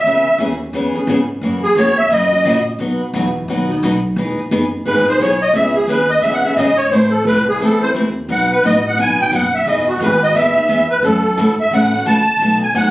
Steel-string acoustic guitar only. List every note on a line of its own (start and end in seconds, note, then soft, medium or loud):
0.06 0.26 C#3 medium
0.06 0.27 E3 medium
0.06 0.27 B3 medium
0.06 0.27 C#4 medium
0.06 0.27 G#4 medium
0.39 0.50 C#3 medium
0.39 0.50 E3 medium
0.39 0.51 B3 medium
0.39 0.51 C#4 loud
0.39 0.51 G#4 medium
0.74 0.94 C#3 medium
0.74 0.94 E3 medium
0.74 0.94 B3 medium
0.74 0.94 C#4 medium
0.74 0.94 G#4 medium
0.95 1.08 B3 soft
0.95 1.08 C#4 soft
0.95 1.08 G#4 medium
1.09 1.19 C#3 medium
1.09 1.20 E3 medium
1.09 1.20 B3 medium
1.09 1.20 C#4 medium
1.09 1.20 G#4 loud
1.43 1.63 C#3 medium
1.43 1.63 E3 medium
1.43 1.64 A#3 medium
1.43 1.64 C#4 medium
1.43 1.64 F#4 medium
1.77 1.88 C#3 medium
1.77 1.88 E3 medium
1.77 1.88 A#3 medium
1.77 1.88 C#4 loud
1.77 1.89 F#4 loud
2.11 2.31 C#3 medium
2.11 2.31 E3 medium
2.11 2.31 A#3 medium
2.11 2.32 C#4 medium
2.11 2.31 F#4 medium
2.32 2.44 A#3 soft
2.32 2.45 C#4 soft
2.32 2.45 F#4 medium
2.45 2.56 C#3 loud
2.45 2.56 E3 medium
2.45 2.56 A#3 loud
2.45 2.57 C#4 medium
2.45 2.57 F#4 loud
2.80 3.01 B2 medium
2.80 3.01 F#3 medium
2.80 3.01 B3 medium
2.80 3.01 D#4 medium
2.80 3.01 F#4 medium
3.14 3.25 B2 medium
3.14 3.25 F#3 medium
3.14 3.26 B3 medium
3.14 3.26 D#4 loud
3.14 3.26 F#4 loud
3.49 3.69 B2 medium
3.49 3.69 F#3 medium
3.49 3.69 B3 medium
3.49 3.69 D#4 medium
3.49 3.69 F#4 medium
3.70 3.83 B3 soft
3.70 3.83 D#4 soft
3.70 3.82 F#4 medium
3.84 3.94 B2 loud
3.84 3.94 F#3 medium
3.84 3.95 B3 loud
3.84 3.95 D#4 loud
3.84 3.95 F#4 medium
4.18 4.39 E3 medium
4.18 4.39 B3 medium
4.18 4.39 D#4 medium
4.18 4.39 G#4 medium
4.51 4.63 E3 medium
4.51 4.63 B3 medium
4.51 4.63 D#4 medium
4.51 4.63 G#4 loud
4.86 5.06 E3 medium
4.86 5.06 B3 medium
4.86 5.07 D#4 medium
4.86 5.07 G#4 medium
5.08 5.20 B3 soft
5.08 5.20 D#4 soft
5.08 5.20 G#4 medium
5.21 5.32 E3 medium
5.21 5.32 B3 medium
5.21 5.32 D#4 medium
5.21 5.32 G#4 loud
5.54 5.76 C#3 medium
5.54 5.76 E3 medium
5.54 5.76 B3 medium
5.54 5.76 C#4 medium
5.54 5.76 G#4 medium
5.89 6.00 C#3 medium
5.89 6.00 E3 medium
5.89 6.00 B3 medium
5.89 6.00 C#4 medium
5.89 6.00 G#4 medium
6.23 6.43 C#3 medium
6.23 6.44 E3 medium
6.23 6.44 B3 medium
6.23 6.44 C#4 medium
6.23 6.44 G#4 medium
6.45 6.57 B3 soft
6.45 6.58 C#4 medium
6.45 6.57 G#4 medium
6.58 6.69 C#3 medium
6.58 6.69 E3 medium
6.58 6.69 B3 loud
6.58 6.69 C#4 medium
6.58 6.69 G#4 loud
6.92 7.13 E3 medium
6.92 7.13 A3 medium
6.92 7.13 C4 medium
6.92 7.14 E4 medium
6.92 7.14 B4 medium
7.27 7.38 E3 medium
7.27 7.38 A3 medium
7.27 7.38 C4 medium
7.27 7.38 E4 medium
7.27 7.38 B4 medium
7.61 7.81 E3 medium
7.61 7.81 A3 medium
7.61 7.82 C4 medium
7.61 7.82 E4 medium
7.61 7.81 B4 medium
7.82 7.95 C4 soft
7.82 7.95 E4 soft
7.82 7.94 B4 soft
7.95 8.06 E3 medium
7.95 8.07 A3 medium
7.95 8.07 C4 medium
7.95 8.07 E4 loud
7.95 8.07 B4 loud
8.29 8.50 B2 medium
8.29 8.50 F#3 medium
8.29 8.50 B3 medium
8.29 8.51 D#4 medium
8.29 8.51 F#4 medium
8.64 8.75 B2 medium
8.64 8.75 F#3 medium
8.64 8.76 B3 loud
8.64 8.76 D#4 medium
8.64 8.76 F#4 medium
8.98 9.18 B2 medium
8.98 9.18 F#3 medium
8.98 9.19 B3 medium
8.98 9.18 D#4 medium
8.98 9.18 F#4 medium
9.19 9.31 B3 soft
9.19 9.32 D#4 medium
9.19 9.32 F#4 medium
9.32 9.43 B2 medium
9.32 9.43 F#3 medium
9.32 9.44 B3 medium
9.32 9.44 D#4 loud
9.32 9.44 F#4 loud
9.66 9.87 E3 medium
9.66 9.88 B3 medium
9.66 9.88 D#4 medium
9.66 9.88 G#4 medium
10.01 10.12 E3 medium
10.01 10.12 B3 medium
10.01 10.12 D#4 medium
10.01 10.13 G#4 medium
10.35 10.55 E3 medium
10.35 10.56 B3 medium
10.35 10.56 D#4 medium
10.35 10.55 G#4 medium
10.56 10.68 B3 soft
10.56 10.68 D#4 medium
10.56 10.68 G#4 medium
10.68 10.80 E3 medium
10.68 10.80 B3 loud
10.68 10.80 D#4 medium
10.68 10.81 G#4 medium
11.03 11.24 C#3 medium
11.03 11.25 E3 medium
11.03 11.25 A3 medium
11.03 11.25 C#4 medium
11.03 11.25 F#4 medium
11.37 11.49 C#3 medium
11.37 11.49 E3 medium
11.37 11.49 A3 medium
11.37 11.49 C#4 medium
11.37 11.49 F#4 medium
11.73 11.93 C#3 medium
11.73 11.93 E3 medium
11.73 11.93 A3 medium
11.73 11.93 C#4 medium
11.73 11.93 F#4 medium
11.94 12.05 A3 soft
11.94 12.05 C#4 soft
11.94 12.05 F#4 medium
12.06 12.17 C#3 medium
12.06 12.17 E3 medium
12.06 12.17 A3 loud
12.06 12.18 C#4 medium
12.06 12.17 F#4 loud
12.41 12.62 B2 medium
12.41 12.62 F#3 medium
12.41 12.62 A3 medium
12.41 12.62 D#4 medium
12.41 12.62 F#4 medium
12.75 12.86 B2 medium
12.75 12.86 F#3 medium
12.75 12.86 A3 loud
12.75 12.86 D#4 loud
12.75 12.86 F#4 loud